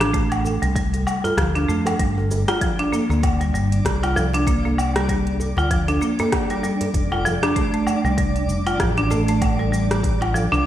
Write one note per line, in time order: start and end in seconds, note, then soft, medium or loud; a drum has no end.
0.00 0.57 A1 loud
0.00 0.13 D4 loud
0.00 cross-stick medium
0.00 closed hi-hat soft
0.00 cabasa soft
0.14 0.31 A3 medium
0.14 kick loud
0.14 closed hi-hat medium
0.14 cabasa soft
0.32 closed hi-hat soft
0.32 cabasa soft
0.32 low woodblock medium
0.45 djembe tone medium
0.45 cabasa medium
0.62 1.03 C2 loud
0.62 0.70 G3 medium
0.62 closed hi-hat soft
0.62 djembe slap soft
0.62 cabasa soft
0.75 1.22 G3 medium
0.75 kick loud
0.75 closed hi-hat medium
0.75 cabasa soft
0.94 closed hi-hat soft
0.94 djembe tone medium
0.94 cabasa soft
1.07 djembe slap soft
1.07 cabasa medium
1.07 low woodblock medium
1.24 1.37 F4 medium
1.24 closed hi-hat soft
1.24 djembe bass medium
1.24 cabasa soft
1.37 1.64 D2 loud
1.37 1.54 F3 loud
1.37 kick loud
1.37 cross-stick medium
1.37 closed hi-hat medium
1.37 cabasa soft
1.55 1.67 D4 loud
1.55 closed hi-hat soft
1.55 cabasa soft
1.68 1.94 F2 medium
1.68 1.85 A3 medium
1.68 djembe tone medium
1.68 cabasa medium
1.86 closed hi-hat soft
1.86 djembe slap medium
1.86 djembe bass medium
1.86 cabasa soft
1.86 low woodblock medium
1.99 2.43 G1 loud
1.99 2.46 G3 medium
1.99 10.66 D4 medium
1.99 10.66 D5 medium
1.99 kick loud
1.99 closed hi-hat medium
1.99 cabasa soft
2.18 djembe tone medium
2.31 djembe bass medium
2.31 cabasa medium
2.48 2.61 F4 medium
2.48 cross-stick medium
2.48 closed hi-hat soft
2.48 cabasa soft
2.48 low woodblock medium
2.61 2.78 F3 medium
2.61 kick loud
2.61 closed hi-hat medium
2.61 cabasa soft
2.79 2.91 D4 loud
2.79 closed hi-hat soft
2.92 3.09 A#3 medium
2.92 djembe tone medium
2.92 cabasa medium
3.09 3.50 D2 loud
3.09 3.23 A#3 medium
3.09 djembe slap soft
3.09 cabasa soft
3.23 kick loud
3.23 closed hi-hat medium
3.23 cabasa soft
3.23 low woodblock medium
3.41 3.48 G3 medium
3.41 closed hi-hat soft
3.41 cabasa soft
3.53 3.80 G1 loud
3.53 4.01 G3 medium
3.53 cabasa medium
3.72 closed hi-hat soft
3.72 cabasa soft
3.85 5.52 C2 medium
3.85 kick loud
3.85 cross-stick medium
3.85 closed hi-hat medium
3.85 cabasa soft
4.03 4.16 F4 medium
4.03 closed hi-hat soft
4.03 cabasa soft
4.03 low woodblock medium
4.16 4.33 F3 loud
4.16 djembe slap medium
4.16 djembe bass medium
4.16 cabasa medium
4.33 4.46 D4 loud
4.33 closed hi-hat soft
4.33 djembe slap medium
4.33 cabasa soft
4.47 4.64 A#3 medium
4.47 kick loud
4.47 closed hi-hat medium
4.47 cabasa soft
4.65 4.77 A#3 medium
4.65 djembe tone medium
4.78 cabasa medium
4.78 low woodblock medium
4.96 5.03 G3 medium
4.96 cross-stick medium
4.96 closed hi-hat soft
4.96 cabasa soft
5.09 5.56 G3 medium
5.09 kick loud
5.09 closed hi-hat medium
5.09 cabasa soft
5.27 closed hi-hat soft
5.40 djembe tone medium
5.40 cabasa medium
5.57 5.97 D2 medium
5.57 5.70 F4 medium
5.57 djembe slap soft
5.57 cabasa soft
5.57 low woodblock medium
5.71 5.88 F3 loud
5.71 kick loud
5.71 closed hi-hat medium
5.71 cabasa soft
5.88 6.00 D4 loud
5.88 closed hi-hat soft
5.88 djembe tone medium
5.88 cabasa soft
6.01 6.18 A#3 medium
6.01 djembe slap soft
6.01 cabasa medium
6.19 6.32 A#3 medium
6.19 closed hi-hat soft
6.19 djembe bass loud
6.19 cabasa soft
6.32 kick loud
6.32 cross-stick medium
6.32 closed hi-hat medium
6.32 cabasa soft
6.32 low woodblock medium
6.50 6.58 G3 medium
6.50 closed hi-hat soft
6.50 cabasa soft
6.63 6.94 G3 medium
6.63 djembe tone medium
6.63 cabasa medium
6.81 closed hi-hat soft
6.81 djembe slap medium
6.81 djembe bass medium
6.81 cabasa soft
6.94 7.38 F1 loud
6.94 kick loud
6.94 closed hi-hat medium
6.94 cabasa soft
7.12 7.25 F4 medium
7.12 djembe tone medium
7.12 low woodblock medium
7.25 7.42 F3 loud
7.25 djembe bass medium
7.25 cabasa medium
7.43 7.55 D4 loud
7.43 cross-stick medium
7.43 closed hi-hat soft
7.43 cabasa soft
7.56 7.72 A3 medium
7.56 kick loud
7.56 closed hi-hat medium
7.56 cabasa soft
7.74 7.86 A3 medium
7.74 closed hi-hat soft
7.87 djembe tone medium
7.87 cabasa medium
7.87 low woodblock medium
8.04 8.45 C2 loud
8.04 8.12 G3 medium
8.04 djembe slap soft
8.04 cabasa soft
8.18 8.65 G3 medium
8.18 kick loud
8.18 closed hi-hat medium
8.18 cabasa soft
8.36 closed hi-hat soft
8.36 cabasa soft
8.48 8.75 F1 loud
8.48 cabasa medium
8.66 8.79 F4 medium
8.66 closed hi-hat soft
8.66 cabasa soft
8.66 low woodblock medium
8.80 10.47 A1 loud
8.80 8.97 F3 loud
8.80 kick loud
8.80 cross-stick medium
8.80 closed hi-hat medium
8.80 cabasa soft
8.97 9.10 D4 loud
8.97 closed hi-hat soft
8.97 cabasa soft
9.10 9.28 A3 medium
9.10 djembe slap medium
9.10 djembe bass loud
9.10 cabasa medium
9.28 9.41 A3 medium
9.28 closed hi-hat soft
9.28 djembe slap soft
9.28 cabasa soft
9.42 kick loud
9.42 closed hi-hat medium
9.42 cabasa soft
9.42 low woodblock medium
9.59 9.67 G3 medium
9.59 djembe tone medium
9.72 10.19 G3 medium
9.72 cabasa medium
9.91 cross-stick medium
9.91 closed hi-hat soft
9.91 cabasa soft
10.03 kick loud
10.03 closed hi-hat medium
10.03 cabasa soft
10.21 10.34 F4 medium
10.21 closed hi-hat soft
10.21 low woodblock medium
10.34 10.51 F3 loud
10.34 djembe tone medium
10.34 cabasa medium
10.52 10.66 C2 medium
10.52 10.64 D4 loud
10.52 djembe slap soft
10.52 cabasa soft